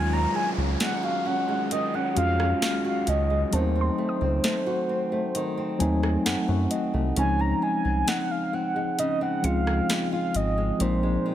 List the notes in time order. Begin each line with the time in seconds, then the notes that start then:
Already playing: D#2 D#3 F#3 G#3 C#4 F4 G#5 F6, downlifter
0.12 C#4 A#5
0.35 G#3 G#5
0.57 C#2 C#4
0.80 G#3 F#5, snare, closed hi-hat
1.03 F#4 F5
1.26 C#4 F#5
1.48 G#3
1.71 D#3 D#5, closed hi-hat
1.94 C#4 F#5
2.15 F2 G#3 C#4 F4 F#4 F5, closed hi-hat
2.39 C#4, cross-stick
2.62 G#3, snare, closed hi-hat
2.85 F#4 F5
3.07 C#2 C#4 D#5, closed hi-hat
3.30 G#3
3.51 D#2 D#3 F#3 A3 C4 C#4 C5 A5, closed hi-hat
3.61 D#4
3.76 C4
3.81 C6
3.98 A3
4.09 D#6
4.21 C#2 C4
4.44 A3, snare, closed hi-hat
4.66 F#4
4.89 C4
5.12 A3
5.35 D#3, closed hi-hat
5.57 C4
5.78 D#2 F#3 A3 C4 D#4 G#5, closed hi-hat
6.03 C4, cross-stick
6.26 F#2 A3 F#5, snare, closed hi-hat
6.48 F#2 F#4
6.71 C4 D#5, closed hi-hat
6.94 C2 A3
7.15 C#2 C#3 E3 G#3 C4 D#4 G#5, closed hi-hat
7.21 F3
7.39 C4 A#5
7.62 G#3 G#5
7.85 C2 C4
8.08 G#3 F#5, snare, closed hi-hat
8.31 F5
8.53 C4 F#5
8.76 G#3
8.98 C#3 D#5, closed hi-hat
9.21 C4 F#5
9.42 C#2 F3 G#3 C4 F4 F5 C#7, closed hi-hat
9.67 C4, cross-stick
9.89 G#3, snare, closed hi-hat
10.12 F4 F5
10.34 G#1 C4 D#5, closed hi-hat
10.58 G#3
10.78 A#1 A#2 F3 G#3 C4 D#4 C5, closed hi-hat
11.03 G#3
11.26 D#3